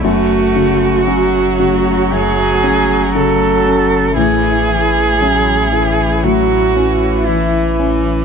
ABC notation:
X:1
M:4/4
L:1/8
Q:1/4=58
K:F#m
V:1 name="Cello"
F4 G2 A2 | G4 F2 E z |]
V:2 name="String section"
[A,Fc]8 | [A,Ec]8 |]
V:3 name="Viola" clef=bass
A,2 F,6 | E,2 F, E, F, E,3 |]
V:4 name="Felt piano" clef=bass
F,, C, C C, F,, C C, C | A,, E, C E, A,, C E, C |]
V:5 name="Sub bass" clef=bass
F,,,8 | A,,,8 |]